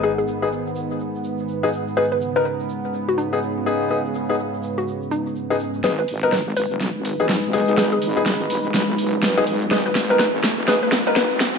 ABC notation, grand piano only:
X:1
M:4/4
L:1/16
Q:"Swing 16ths" 1/4=124
K:G#m
V:1 name="Grand piano"
[B,DG] z2 [B,DG] z8 z [B,DG] z2 | [B,DG] z2 [B,DA] z6 z [B,DG] z2 [B,DG]2 | [B,DG] z2 [B,DG] z8 z [B,DG] z2 | [B,DG] z2 [B,DA] z6 z [B,DG] z2 [B,DG]2 |
[B,DG] z2 [B,DG] z8 z [B,DG] z2 | [B,DG] z2 [B,DA] z4 [B,DG] z2 [B,DA] z4 |]